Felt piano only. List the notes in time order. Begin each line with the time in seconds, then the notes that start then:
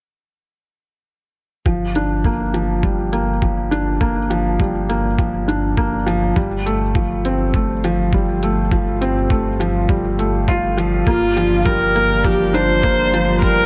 1.66 F3
1.96 D4
2.25 A#3
2.54 F3
2.83 G3
3.13 A#3
3.42 F3
3.71 D4
4.01 A#3
4.30 F3
4.60 G3
4.89 A#3
5.19 F3
5.48 D4
5.78 A#3
6.07 F3
6.36 G3
6.66 A3
6.96 F3
7.25 C4
7.55 A3
7.84 F3
8.14 G3
8.43 A3
8.72 F3
9.01 C4
9.30 A3
9.60 F3
9.89 G3
10.19 A3
10.48 F4
10.78 F3
11.07 A#3
11.37 F3
11.66 G3
11.95 A#3
12.25 F3
12.54 D4
12.83 A#3
13.13 F3
13.42 G3